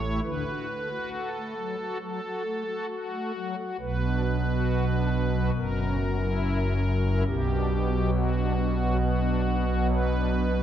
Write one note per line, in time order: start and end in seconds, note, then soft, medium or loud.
0.00 0.20 A1 medium
0.00 0.20 A2 medium
0.00 0.21 E4 soft
0.00 0.20 C#5 medium
0.23 0.42 D2 medium
0.23 0.42 D3 medium
0.23 1.09 B4 medium
0.46 0.66 F#4 soft
0.68 0.88 A3 soft
0.90 1.29 F#4 medium
1.12 1.97 A4 medium
1.34 1.54 A3 medium
1.56 1.75 F#3 soft
1.78 1.97 F#4 medium
2.00 2.20 F#3 medium
2.00 2.85 A4 medium
2.23 2.42 F#4 medium
2.44 2.63 A3 medium
2.66 2.86 F#4 medium
2.88 3.56 F#4 medium
3.12 3.32 A3 medium
3.35 3.55 F#3 medium
3.58 3.76 F#4 medium
3.80 5.50 B1 medium
3.80 5.50 B2 medium
3.80 5.50 B4 loud
4.03 4.22 D4 medium
4.24 4.43 F#3 medium
4.47 4.85 F#4 medium
4.90 5.08 D4 medium
5.12 5.30 F#3 medium
5.34 5.51 F#4 medium
5.56 7.23 F#1 medium
5.56 7.23 F#2 medium
5.56 7.23 A#4 loud
5.77 5.96 C#4 medium
5.98 6.17 F#3 medium
6.21 6.58 E4 medium
6.65 6.83 C#4 medium
6.85 7.03 F#3 medium
7.06 7.24 E4 medium
7.27 10.63 B1 medium
7.27 10.63 B2 medium
7.27 8.10 G4 loud
7.48 7.67 D4 medium
7.68 7.88 B3 medium
7.92 8.30 F#3 medium
8.13 8.97 F#4 medium
8.34 8.53 D4 medium
8.55 8.75 B3 medium
8.78 8.97 F#3 medium
8.99 9.19 B3 medium
8.99 9.87 F#4 loud
9.21 9.41 D4 medium
9.44 9.64 B3 medium
9.68 10.07 F#3 medium
9.89 10.63 B4 loud
10.11 10.31 D4 medium
10.33 10.52 B3 medium
10.54 10.63 F#3 medium